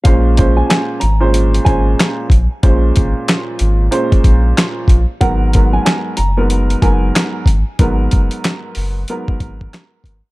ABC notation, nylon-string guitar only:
X:1
M:4/4
L:1/16
Q:"Swing 16ths" 1/4=93
K:Abdor
V:1 name="Nylon-string guitar"
f3 a a2 b4 a3 z3 | z16 | g3 a a2 b4 a3 z3 | z16 |]